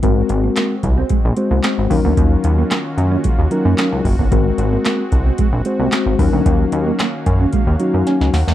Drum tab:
HH |x-x-x-x-x-x-x-o-|x-x-x-x-x-x-x-o-|x-x-x-x-x-x-x-o-|x-x-x-x-x-x-x-o-|
CP |----x-------x---|----x-------x---|----x-------x---|----x-----------|
SD |----o-------o---|----o-------o---|----o-------o---|----o-------oooo|
BD |o-----o-o-----o-|o-------o-----oo|o-----o-o-----o-|o-----o-o-------|